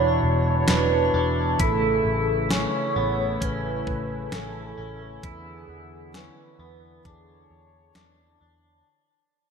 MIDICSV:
0, 0, Header, 1, 7, 480
1, 0, Start_track
1, 0, Tempo, 909091
1, 842, Time_signature, 4, 2, 24, 8
1, 5017, End_track
2, 0, Start_track
2, 0, Title_t, "Glockenspiel"
2, 0, Program_c, 0, 9
2, 0, Note_on_c, 0, 83, 52
2, 364, Note_off_c, 0, 83, 0
2, 371, Note_on_c, 0, 83, 48
2, 1060, Note_off_c, 0, 83, 0
2, 5017, End_track
3, 0, Start_track
3, 0, Title_t, "Soft synth lead"
3, 0, Program_c, 1, 80
3, 0, Note_on_c, 1, 73, 107
3, 374, Note_on_c, 1, 71, 97
3, 382, Note_off_c, 1, 73, 0
3, 728, Note_off_c, 1, 71, 0
3, 858, Note_on_c, 1, 69, 100
3, 1309, Note_off_c, 1, 69, 0
3, 1341, Note_on_c, 1, 73, 103
3, 1818, Note_on_c, 1, 71, 105
3, 1826, Note_off_c, 1, 73, 0
3, 2297, Note_on_c, 1, 69, 95
3, 2305, Note_off_c, 1, 71, 0
3, 2649, Note_off_c, 1, 69, 0
3, 2780, Note_on_c, 1, 68, 92
3, 3258, Note_on_c, 1, 71, 96
3, 3266, Note_off_c, 1, 68, 0
3, 3741, Note_on_c, 1, 68, 81
3, 3749, Note_off_c, 1, 71, 0
3, 4452, Note_off_c, 1, 68, 0
3, 5017, End_track
4, 0, Start_track
4, 0, Title_t, "Clean electric guitar"
4, 0, Program_c, 2, 27
4, 0, Note_on_c, 2, 62, 74
4, 357, Note_off_c, 2, 62, 0
4, 363, Note_on_c, 2, 62, 70
4, 596, Note_off_c, 2, 62, 0
4, 602, Note_on_c, 2, 62, 70
4, 842, Note_off_c, 2, 62, 0
4, 845, Note_on_c, 2, 64, 79
4, 1323, Note_off_c, 2, 64, 0
4, 1324, Note_on_c, 2, 61, 71
4, 1561, Note_off_c, 2, 61, 0
4, 1563, Note_on_c, 2, 59, 69
4, 1799, Note_off_c, 2, 59, 0
4, 1801, Note_on_c, 2, 61, 72
4, 2276, Note_off_c, 2, 61, 0
4, 2282, Note_on_c, 2, 61, 76
4, 2516, Note_off_c, 2, 61, 0
4, 2522, Note_on_c, 2, 61, 68
4, 2762, Note_off_c, 2, 61, 0
4, 2763, Note_on_c, 2, 64, 73
4, 3243, Note_off_c, 2, 64, 0
4, 3244, Note_on_c, 2, 61, 62
4, 3480, Note_off_c, 2, 61, 0
4, 3482, Note_on_c, 2, 59, 64
4, 3721, Note_off_c, 2, 59, 0
4, 3723, Note_on_c, 2, 62, 66
4, 4197, Note_off_c, 2, 62, 0
4, 4203, Note_on_c, 2, 62, 70
4, 4434, Note_off_c, 2, 62, 0
4, 4441, Note_on_c, 2, 62, 60
4, 4681, Note_off_c, 2, 62, 0
4, 5017, End_track
5, 0, Start_track
5, 0, Title_t, "Analog synth pad"
5, 0, Program_c, 3, 89
5, 0, Note_on_c, 3, 47, 84
5, 0, Note_on_c, 3, 52, 72
5, 0, Note_on_c, 3, 64, 87
5, 0, Note_on_c, 3, 73, 73
5, 821, Note_off_c, 3, 64, 0
5, 822, Note_off_c, 3, 47, 0
5, 833, Note_off_c, 3, 73, 0
5, 843, Note_on_c, 3, 57, 70
5, 843, Note_on_c, 3, 64, 83
5, 844, Note_on_c, 3, 49, 74
5, 2742, Note_off_c, 3, 52, 0
5, 2743, Note_off_c, 3, 57, 0
5, 2744, Note_off_c, 3, 49, 0
5, 2764, Note_on_c, 3, 52, 70
5, 2764, Note_on_c, 3, 59, 69
5, 2765, Note_on_c, 3, 50, 78
5, 3713, Note_off_c, 3, 59, 0
5, 3723, Note_on_c, 3, 73, 70
5, 4662, Note_off_c, 3, 64, 0
5, 4664, Note_off_c, 3, 52, 0
5, 4665, Note_off_c, 3, 50, 0
5, 4673, Note_off_c, 3, 73, 0
5, 5017, End_track
6, 0, Start_track
6, 0, Title_t, "Picked electric bass"
6, 0, Program_c, 4, 34
6, 0, Note_on_c, 4, 28, 85
6, 93, Note_off_c, 4, 28, 0
6, 123, Note_on_c, 4, 28, 78
6, 333, Note_off_c, 4, 28, 0
6, 362, Note_on_c, 4, 28, 81
6, 573, Note_off_c, 4, 28, 0
6, 602, Note_on_c, 4, 28, 82
6, 813, Note_off_c, 4, 28, 0
6, 842, Note_on_c, 4, 33, 82
6, 1053, Note_off_c, 4, 33, 0
6, 1082, Note_on_c, 4, 33, 86
6, 1398, Note_off_c, 4, 33, 0
6, 1564, Note_on_c, 4, 33, 81
6, 1774, Note_off_c, 4, 33, 0
6, 1804, Note_on_c, 4, 33, 86
6, 2014, Note_off_c, 4, 33, 0
6, 2044, Note_on_c, 4, 33, 76
6, 2254, Note_off_c, 4, 33, 0
6, 2283, Note_on_c, 4, 33, 82
6, 2494, Note_off_c, 4, 33, 0
6, 2523, Note_on_c, 4, 33, 78
6, 2734, Note_off_c, 4, 33, 0
6, 2763, Note_on_c, 4, 40, 87
6, 2974, Note_off_c, 4, 40, 0
6, 3002, Note_on_c, 4, 40, 78
6, 3318, Note_off_c, 4, 40, 0
6, 3480, Note_on_c, 4, 40, 80
6, 3692, Note_off_c, 4, 40, 0
6, 3723, Note_on_c, 4, 40, 85
6, 3934, Note_off_c, 4, 40, 0
6, 3962, Note_on_c, 4, 40, 76
6, 4173, Note_off_c, 4, 40, 0
6, 4202, Note_on_c, 4, 40, 82
6, 4413, Note_off_c, 4, 40, 0
6, 4442, Note_on_c, 4, 40, 82
6, 4653, Note_off_c, 4, 40, 0
6, 5017, End_track
7, 0, Start_track
7, 0, Title_t, "Drums"
7, 357, Note_on_c, 9, 38, 93
7, 359, Note_on_c, 9, 42, 55
7, 410, Note_off_c, 9, 38, 0
7, 412, Note_off_c, 9, 42, 0
7, 842, Note_on_c, 9, 42, 73
7, 843, Note_on_c, 9, 36, 99
7, 895, Note_off_c, 9, 42, 0
7, 896, Note_off_c, 9, 36, 0
7, 1323, Note_on_c, 9, 38, 104
7, 1326, Note_on_c, 9, 42, 60
7, 1376, Note_off_c, 9, 38, 0
7, 1379, Note_off_c, 9, 42, 0
7, 1804, Note_on_c, 9, 36, 79
7, 1805, Note_on_c, 9, 42, 61
7, 1857, Note_off_c, 9, 36, 0
7, 1858, Note_off_c, 9, 42, 0
7, 2044, Note_on_c, 9, 36, 74
7, 2096, Note_off_c, 9, 36, 0
7, 2282, Note_on_c, 9, 38, 89
7, 2284, Note_on_c, 9, 42, 52
7, 2335, Note_off_c, 9, 38, 0
7, 2336, Note_off_c, 9, 42, 0
7, 2764, Note_on_c, 9, 36, 107
7, 2764, Note_on_c, 9, 42, 73
7, 2816, Note_off_c, 9, 42, 0
7, 2817, Note_off_c, 9, 36, 0
7, 3244, Note_on_c, 9, 38, 96
7, 3247, Note_on_c, 9, 42, 58
7, 3297, Note_off_c, 9, 38, 0
7, 3299, Note_off_c, 9, 42, 0
7, 3723, Note_on_c, 9, 36, 75
7, 3723, Note_on_c, 9, 42, 57
7, 3776, Note_off_c, 9, 36, 0
7, 3776, Note_off_c, 9, 42, 0
7, 4198, Note_on_c, 9, 38, 93
7, 4200, Note_on_c, 9, 42, 49
7, 4251, Note_off_c, 9, 38, 0
7, 4253, Note_off_c, 9, 42, 0
7, 5017, End_track
0, 0, End_of_file